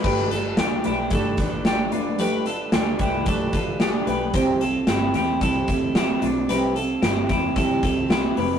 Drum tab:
CC |x-------|--------|--------|--------|
HH |-xxxxxxx|xxxxxxxx|xxxxxxxx|xxxxxxxo|
SD |--o--oo-|--o---o-|--o---o-|--o---o-|
BD |o---oo--|---ooo--|o---oo--|---ooo--|